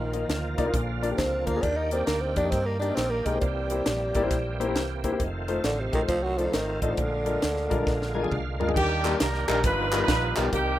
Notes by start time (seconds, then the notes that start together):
Already playing: A#1 A#2 D#3 F3 A#3 F4
0.13 A#3 D#4 F4 D#5, closed hi-hat
0.29 D2, snare, closed hi-hat
0.58 C2 A#3 D#4 F4 D5, kick, closed hi-hat
0.66 A#3 D#4 F4 A#4
0.74 A#1 A#2 D3 F3 A#3 D#4, kick, closed hi-hat
0.79 F4
1.02 A#3 D4 F4 D5, closed hi-hat
1.11 A#3 D4 G4
1.18 C#2 C4, kick, snare, closed hi-hat
1.46 D2 A#3 D4 F4 C5, kick, closed hi-hat
1.56 A#3 D4 F4 G#4
1.62 D#2 D#3 A#3 D4 G4, kick, closed hi-hat
1.77 D#4
1.91 A#3 C4 D#4 G4 D5, closed hi-hat
2.06 D2 A#3, snare, closed hi-hat
2.22 C4
2.36 F2 A#3 D4 D#4 G4 D5, kick, closed hi-hat
2.44 A#3 D#4 G4 D#5
2.51 G2 C4, kick, snare, closed hi-hat
2.66 A#3
2.80 A#3 D4 D#4 G4 D5, closed hi-hat
2.90 A#3 D#4 G4 D#5
2.95 A#1 C4, snare, closed hi-hat
3.10 A#3
3.26 B1 G#3 A#3 D#4 G4 A#4, kick, closed hi-hat
3.34 A#3 D#4 G4 C5
3.41 C2 C3 E3 G3 A#3 C4 F4, kick, closed hi-hat
3.47 G4
3.70 A#3 E4 G4 C5, closed hi-hat
3.86 A#1, snare, closed hi-hat
4.15 G#1 A#3 E4 G4 D5, kick, closed hi-hat
4.23 A#3 E4 G4 C5
4.31 A#1, kick, snare, closed hi-hat
4.60 A#3 E4 G4 C5, closed hi-hat
4.68 A#3 E4 G4 C5
4.75 C2, snare, closed hi-hat
5.04 A#3 E4 G4 C5, kick, closed hi-hat
5.12 A#3 E4 G4 C5
5.19 F1 D#3 A3 C4 D#4, kick, closed hi-hat
5.25 F4
5.48 A3 D#4 F4 C5, closed hi-hat
5.64 A1 D3, snare, closed hi-hat
5.80 C3
5.93 A#1 D#3 A3 D#4 F4 G4, kick, closed hi-hat
6.01 A3 D#4 F4 C5
6.08 C2 F3, kick, snare, closed hi-hat
6.23 F#3
6.38 F3 A3 D#4 F4 D5, closed hi-hat
6.46 A3 D#4 F4 C5
6.53 G#1 D#3, snare, closed hi-hat
6.82 A1 D3 A3 D#4 F4 D#5, kick, closed hi-hat
6.90 A3 D#4 F4 C5
6.97 A#1 A#2 D3 G#3 A#3 F4, kick, closed hi-hat
7.26 G#3 D4 F4 A#4, closed hi-hat
7.42 D2, snare, closed hi-hat
7.57 snare
7.70 A#1 G#3 D4 F4 A#4, kick, closed hi-hat
7.79 G#3 D4 F4 A#4
7.87 A#1, kick, snare
8.02 snare
8.14 G#3 D4 F4 A#4 G#5
8.23 G#3 D4 F4 G#4, high tom
8.30 C2 F5, kick, mid tom
8.60 D2 G#3 D4 F4 A#4, floor tom
8.68 G#3 D4 F4 G#4, floor tom
8.74 D#2 D#3 G3 A#3 D4 G4, kick, crash
9.05 G3 A#3 D4 D#4 A#4, clap, closed hi-hat
9.20 C2 A#4, snare, closed hi-hat
9.34 snare
9.48 A#1 G3 A#3 D4 D#4 A#4, clap, closed hi-hat
9.64 G1 G2 D#3 F3 G3 B3 D#4 F4 B4, kick, snare, closed hi-hat
9.92 G3 B3 D#4 F4 A#4, clap, closed hi-hat
10.01 D#4 F4 B4
10.08 A#1, kick, snare, closed hi-hat
10.36 B1 G3 B3 D#4 F4 G4 A#4, clap, closed hi-hat
10.52 C2 C3 D#3 G3 A#3 C4 D#4 F#4 G4, kick, closed hi-hat
10.58 G4